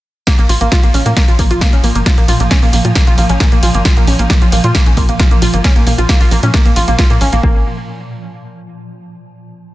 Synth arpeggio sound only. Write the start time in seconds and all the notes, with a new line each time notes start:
0.27 A#3
0.39 A#3
0.49 F4
0.61 A#3
0.72 F4
0.83 A#3
0.94 C#4
1.06 A#3
1.17 A#3
1.28 F4
1.39 A#3
1.51 F4
1.61 A#3
1.73 C#4
1.84 A#3
1.96 A#3
2.06 F4
2.18 A#3
2.29 F4
2.40 A#3
2.51 C#4
2.63 A#3
2.73 A#3
2.85 F4
2.96 A#3
3.07 F4
3.18 A#3
3.30 C#4
3.41 A#3
3.52 A#3
3.63 F4
3.75 A#3
3.85 F4
3.97 A#3
4.08 C#4
4.19 A#3
4.30 A#3
4.42 F4
4.52 A#3
4.64 F4
4.75 A#3
4.87 C#4
4.97 A#3
5.09 A#3
5.20 F4
5.31 A#3
5.42 F4
5.54 A#3
5.64 C#4
5.76 A#3
5.87 A#3
5.98 F4
6.09 A#3
6.21 F4
6.31 A#3
6.43 C#4
6.54 A#3
6.65 A#3
6.76 F4
6.88 A#3
6.99 F4
7.10 A#3
7.21 C#4
7.33 A#3
7.43 A#3